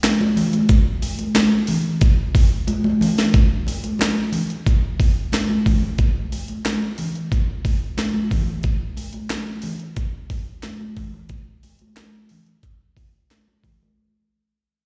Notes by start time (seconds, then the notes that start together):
0.03 snare, clap, closed hi-hat, high conga
0.21 high conga
0.36 open hi-hat, low conga
0.53 closed hi-hat, high conga
0.69 kick, closed hi-hat, muted conga
1.02 open hi-hat, muted conga
1.19 closed hi-hat, high conga
1.35 snare, clap, closed hi-hat, muted conga, high conga
1.67 open hi-hat, muted conga, low conga
2.01 kick, closed hi-hat, muted conga
2.35 kick, open hi-hat
2.67 closed hi-hat, high conga
2.84 high conga
3.01 open hi-hat, muted conga, low conga
3.18 snare, closed hi-hat, high conga
3.34 kick, closed hi-hat, muted conga
3.67 open hi-hat, muted conga
3.84 closed hi-hat, high conga
3.99 snare, clap, closed hi-hat, muted conga, high conga
4.32 open hi-hat, low conga
4.50 closed hi-hat
4.66 kick, closed hi-hat, muted conga
5.00 kick, open hi-hat
5.32 snare, clap, closed hi-hat, muted conga, high conga
5.49 high conga
5.66 kick, open hi-hat, low conga
5.83 high conga
5.98 kick, closed hi-hat, muted conga
6.32 open hi-hat, muted conga
6.48 closed hi-hat, high conga
6.65 snare, clap, closed hi-hat, high conga
6.98 open hi-hat, muted conga, low conga
7.15 closed hi-hat
7.32 kick, closed hi-hat, muted conga
7.65 kick, open hi-hat, muted conga
7.97 snare, clap, closed hi-hat, muted conga, high conga
8.14 high conga
8.30 kick, open hi-hat, muted conga, low conga
8.48 high conga
8.63 kick, closed hi-hat
8.97 open hi-hat, muted conga
9.13 closed hi-hat, high conga
9.30 snare, clap, closed hi-hat, muted conga, high conga
9.62 open hi-hat, muted conga, low conga
9.80 closed hi-hat
9.96 kick, closed hi-hat, muted conga
10.30 kick, open hi-hat, muted conga
10.62 snare, clap, closed hi-hat, muted conga, high conga
10.81 high conga
10.96 kick, open hi-hat, low conga
11.14 high conga
11.29 kick, closed hi-hat
11.63 open hi-hat, muted conga
11.79 closed hi-hat, high conga
11.96 snare, clap, closed hi-hat, high conga
12.29 open hi-hat, low conga
12.46 closed hi-hat
12.63 kick, closed hi-hat
12.97 kick, open hi-hat, muted conga
13.30 snare, clap, closed hi-hat, muted conga, high conga
13.48 high conga
13.64 kick, open hi-hat, low conga
13.83 high conga